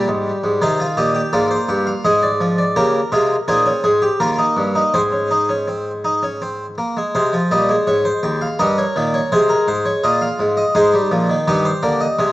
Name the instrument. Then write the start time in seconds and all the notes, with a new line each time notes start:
harpsichord
Already playing: G3 G4 D5
0.08 G#2
0.44 G#2
0.62 C3 D#3 D#4 C5
0.80 F4
0.97 A#2 G4 D#5
1.15 G4
1.33 G#2 A#3 F4 D5
1.51 C5
1.68 G2 G5
1.87 F5
2.05 G#2 G#3 D#5
2.23 D5
2.41 F3
2.58 D5
2.76 C#3 A#3 G4 A#4
3.12 C3 G#3 F4
3.48 A#2 C4 D#4 G#4
3.66 C#4
3.84 G#2 G#4
4.02 G4
4.20 D#2 A#3 F4 A#4
4.39 D#4
4.57 G2
4.75 D#4
4.94 G#2 C4 G#4 C5
5.12 C#4
5.31 D#4
5.49 C#4
5.68 C4
6.05 D#4
6.23 C#4
6.42 C4
6.78 A#3
6.97 G#3
7.15 C3 G#3 C5
7.33 F3
7.51 A#2 G3 D#5
7.69 G#3
7.87 G#2 C#5
8.05 C5
8.23 D#2 G5
8.41 F5
8.59 G2 G3 A#4 D#5
8.78 C#5
8.96 A#2 D#3
9.14 C#5
9.32 C3 G#3 G#4 C5
9.49 A#4
9.68 G#2 C5
9.86 C#5
10.04 A#2 F4 D#5
10.21 F5
10.40 G#2
10.57 D#5
10.75 G#2 G#3 D#4 C5
10.94 G3
11.12 A#2 F3
11.29 D#3
11.48 G2 D#3 G4 D#5
11.65 C5
11.83 D3 A#3 D5
12.00 D#5
12.19 C3 G#3